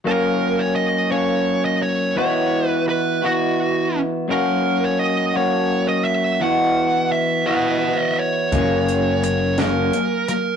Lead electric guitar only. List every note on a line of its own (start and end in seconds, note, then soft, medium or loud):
0.07 0.61 A#4 medium
0.59 0.75 C#5 medium
0.75 1.11 D#5 medium
1.12 1.65 C#5 medium
1.65 1.82 D#5 medium
1.82 2.17 C#5 medium
2.18 2.67 C#5 medium
2.67 2.84 B4 medium
2.89 3.25 B4 medium
3.25 3.99 F#4 medium
4.31 4.84 A#4 medium
4.84 4.99 C#5 medium
4.99 5.36 D#5 medium
5.37 5.88 C#5 medium
5.88 6.04 D#5 medium
6.04 6.41 E5 medium
6.41 7.12 F#5 medium
7.12 7.47 E5 medium
7.47 8.18 D#5 medium
7.47 8.02 F#5 medium
8.02 8.22 E5 medium
8.19 9.23 C#5 medium
9.24 9.59 C#5 medium
9.59 10.28 A#4 medium
10.29 10.56 A#4 medium